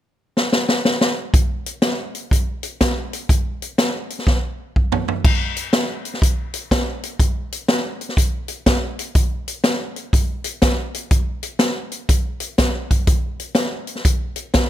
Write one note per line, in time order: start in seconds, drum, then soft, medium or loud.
0.37 snare medium
0.53 snare medium
0.69 snare medium
0.85 snare medium
1.01 snare medium
1.34 kick loud
1.34 closed hi-hat medium
1.66 closed hi-hat medium
1.82 snare loud
1.82 closed hi-hat medium
2.15 closed hi-hat soft
2.31 kick loud
2.31 closed hi-hat medium
2.63 closed hi-hat medium
2.81 kick medium
2.81 snare loud
2.81 closed hi-hat medium
3.13 closed hi-hat medium
3.29 kick loud
3.29 closed hi-hat medium
3.62 closed hi-hat medium
3.78 snare loud
3.78 closed hi-hat medium
4.10 closed hi-hat medium
4.19 snare soft
4.27 kick medium
4.27 snare medium
4.76 kick medium
4.92 floor tom medium
5.08 floor tom medium
5.25 kick loud
5.25 crash medium
5.56 closed hi-hat medium
5.73 snare loud
5.73 closed hi-hat medium
6.05 closed hi-hat medium
6.14 snare soft
6.22 kick loud
6.22 closed hi-hat medium
6.54 closed hi-hat medium
6.71 kick medium
6.71 snare loud
6.71 closed hi-hat medium
7.03 closed hi-hat medium
7.20 kick loud
7.20 closed hi-hat medium
7.52 closed hi-hat medium
7.68 snare loud
7.68 closed hi-hat medium
8.01 closed hi-hat medium
8.09 snare soft
8.17 kick loud
8.17 closed hi-hat medium
8.48 closed hi-hat medium
8.66 kick medium
8.66 snare loud
8.66 closed hi-hat medium
8.99 closed hi-hat medium
9.15 kick loud
9.15 closed hi-hat medium
9.48 closed hi-hat medium
9.64 snare loud
9.64 closed hi-hat medium
9.96 closed hi-hat medium
10.13 kick loud
10.13 closed hi-hat medium
10.44 closed hi-hat medium
10.62 kick medium
10.62 snare medium
10.62 closed hi-hat medium
10.94 closed hi-hat medium
11.11 kick loud
11.11 closed hi-hat medium
11.43 closed hi-hat medium
11.59 snare loud
11.59 closed hi-hat medium
11.92 closed hi-hat medium
12.09 kick loud
12.09 closed hi-hat medium
12.40 closed hi-hat medium
12.58 kick medium
12.58 snare loud
12.58 closed hi-hat medium
12.91 kick medium
12.91 closed hi-hat medium
13.07 kick loud
13.07 closed hi-hat medium
13.40 closed hi-hat medium
13.55 snare loud
13.55 closed hi-hat medium
13.87 closed hi-hat medium
13.95 snare soft
14.05 kick loud
14.05 closed hi-hat medium
14.36 closed hi-hat medium
14.54 kick medium
14.54 snare loud
14.54 closed hi-hat medium